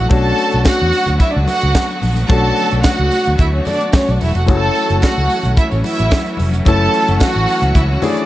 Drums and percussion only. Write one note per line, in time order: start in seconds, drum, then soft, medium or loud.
0.10 kick loud
0.10 closed hi-hat medium
0.10 tambourine medium
0.10 muted conga soft
0.38 open hi-hat medium
0.38 tambourine medium
0.52 closed hi-hat soft
0.65 kick loud
0.65 snare loud
0.65 clap medium
0.65 closed hi-hat medium
0.65 tambourine loud
0.65 high conga medium
0.93 open hi-hat medium
0.93 tambourine soft
1.06 closed hi-hat soft
1.06 tambourine soft
1.06 low conga medium
1.20 kick loud
1.20 closed hi-hat medium
1.20 tambourine soft
1.48 open hi-hat medium
1.48 tambourine medium
1.48 muted conga medium
1.62 closed hi-hat soft
1.75 kick loud
1.75 snare loud
1.75 clap loud
1.75 closed hi-hat medium
1.75 tambourine loud
1.75 high conga medium
1.91 tambourine soft
2.02 open hi-hat medium
2.02 high conga medium
2.16 closed hi-hat medium
2.16 tambourine soft
2.16 high conga medium
2.29 kick loud
2.29 closed hi-hat medium
2.29 tambourine medium
2.29 muted conga soft
2.56 open hi-hat medium
2.56 tambourine soft
2.71 closed hi-hat medium
2.71 tambourine soft
2.83 kick loud
2.83 snare loud
2.83 clap medium
2.83 closed hi-hat medium
2.83 tambourine medium
2.83 high conga medium
3.11 open hi-hat medium
3.11 tambourine soft
3.11 muted conga soft
3.25 closed hi-hat soft
3.25 tambourine soft
3.38 kick loud
3.38 closed hi-hat medium
3.38 tambourine soft
3.65 open hi-hat medium
3.65 tambourine medium
3.65 muted conga medium
3.65 low conga medium
3.81 closed hi-hat soft
3.92 kick loud
3.92 snare loud
3.92 clap medium
3.92 closed hi-hat medium
3.92 tambourine loud
3.92 high conga medium
4.07 tambourine soft
4.21 open hi-hat medium
4.21 high conga medium
4.34 closed hi-hat medium
4.34 tambourine soft
4.47 kick loud
4.47 closed hi-hat medium
4.47 tambourine medium
4.47 muted conga soft
4.75 open hi-hat medium
4.75 tambourine soft
4.90 closed hi-hat medium
5.02 kick loud
5.02 snare loud
5.02 clap medium
5.02 closed hi-hat medium
5.02 tambourine medium
5.02 high conga medium
5.30 open hi-hat medium
5.30 tambourine medium
5.30 muted conga soft
5.43 closed hi-hat soft
5.43 tambourine soft
5.43 low conga medium
5.57 kick loud
5.57 closed hi-hat medium
5.57 tambourine medium
5.71 tambourine soft
5.84 open hi-hat medium
5.84 tambourine soft
5.84 muted conga medium
5.99 closed hi-hat soft
6.11 kick loud
6.11 snare loud
6.11 clap medium
6.11 closed hi-hat medium
6.11 tambourine medium
6.11 high conga medium
6.26 tambourine soft
6.37 open hi-hat medium
6.37 high conga medium
6.52 closed hi-hat medium
6.52 tambourine soft
6.52 high conga medium
6.65 kick loud
6.65 closed hi-hat medium
6.65 tambourine medium
6.65 muted conga soft
6.93 open hi-hat soft
6.93 tambourine medium
7.08 closed hi-hat soft
7.08 tambourine soft
7.20 kick loud
7.20 snare loud
7.20 clap medium
7.20 closed hi-hat medium
7.20 tambourine medium
7.20 high conga medium
7.47 open hi-hat medium
7.47 tambourine soft
7.62 closed hi-hat soft
7.74 kick loud
7.74 closed hi-hat medium
7.74 tambourine medium
8.02 open hi-hat medium
8.02 tambourine medium
8.02 muted conga medium
8.02 low conga medium
8.17 closed hi-hat soft